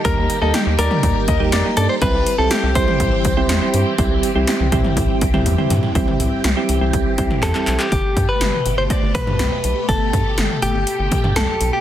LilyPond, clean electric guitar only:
\new Staff \with { instrumentName = "Clean electric guitar" } { \time 4/4 \key c \major \tempo 4 = 122 bes'8. a'16 g'8 bes'2 a'16 c''16 | b'8. a'16 g'8 c''2~ c''8~ | c''2. r4 | r2. a'8. g'16 |
g'8. b'4 c''16 d''8 b'4. | a'4. g'4. a'8. g'16 | }